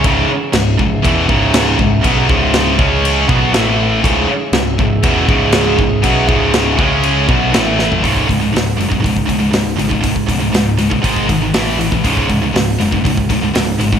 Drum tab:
CC |x---x---x---x---|x---x---x---x---|x---x---x---x---|x---x---x---x---|
HH |----------------|----------------|----------------|----------------|
SD |----o-------o---|----o-------o---|----o-------o---|----o-------o-o-|
FT |----------------|----------------|----------------|---------------o|
BD |o-----o-o-o---o-|o-o---o---o-----|o-----o-o-o---o-|o-o---o---o-----|

CC |----------------|----------------|----------------|
HH |o-o-o-o-o-o-o-o-|o-o-o-o-o-o-o-o-|o-o-o-o-o-o-o-o-|
SD |----o-------o---|----o-------o---|----o-------o---|
FT |----------------|----------------|----------------|
BD |ooo----oooo----o|ooo----oooo----o|ooo----oooo----o|